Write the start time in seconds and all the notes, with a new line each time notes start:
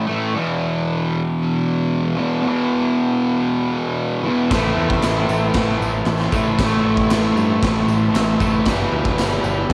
0.07 E3 A3
0.12 A2
0.34 E2 B2
0.39 E3
2.16 B2 E3
2.20 E2
2.42 E2 B2
2.47 E3
4.24 B2 E3
4.30 E2
4.49 A1 A2 E3 E4 A4 C5, kick, snare, tambourine, crash
4.55 A3
4.77 E2
4.90 kick
5.02 A1, snare, tambourine, crash
5.29 A1, tambourine
5.54 A1, kick, snare, crash
5.80 A1, tambourine
6.05 A1, snare, tambourine, crash
6.32 A2 E3 A3, kick, tambourine
6.36 A2
6.59 A1 A2 E3, kick, snare, tambourine, crash
6.63 A3
6.84 A1
6.97 kick
7.09 A1, snare, tambourine, crash
7.36 G2, tambourine
7.63 A1, kick, snare, crash
7.87 A1, tambourine
8.14 A1 E5, snare, tambourine, crash
8.40 A1 E3 A3, kick, tambourine
8.45 A2
8.65 G1 E2 B2 E4 G4 B4, kick, snare, tambourine, crash
8.71 E3
8.92 D2
9.05 kick
9.17 G1, snare, tambourine, crash
9.44 G1, tambourine
9.69 G1, kick, crash